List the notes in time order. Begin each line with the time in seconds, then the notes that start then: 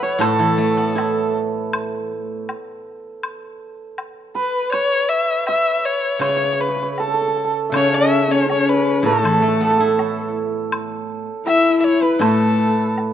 Already playing: E3 A4 B4 E5 F#5 A5
0.03 C#5
0.19 A2 A4, high woodblock
0.39 E3
0.58 A3
0.77 B3
0.95 E4 A4, high woodblock, low woodblock
1.73 high woodblock
2.49 high woodblock, low woodblock
3.23 high woodblock
3.98 high woodblock, low woodblock
4.35 B4
4.72 C#5, high woodblock
5.09 E5
5.47 E5, high woodblock, low woodblock
5.85 C#5
6.19 C#3 C#5, high woodblock
6.29 C#5
6.37 C#5
6.53 C#5
6.60 B4 C#5
6.69 C#5
6.76 C#5
6.83 C#5
6.92 B4
6.98 A4, low woodblock
7.08 A4
7.14 A4
7.21 A4
7.28 A4
7.37 A4
7.44 A4
7.70 C#3 E5
7.74 C#4 C#5, high woodblock
7.94 E5
8.31 C#4 C#5
8.49 C#4 C#5, low woodblock
8.69 B4
9.03 A2 A3 A4
9.12 A4
9.19 A4
9.23 E3 A4, high woodblock
9.33 A4
9.41 A3 A4
9.48 A4
9.57 B3 A4
9.64 A4
9.71 A4
9.78 E4 A4
9.87 A4
9.99 C#5, low woodblock
10.72 high woodblock
11.47 E4 E5, low woodblock
11.80 E5
11.84 C#5
12.02 B4
12.14 B4
12.19 A2 A3 A4, high woodblock
12.98 low woodblock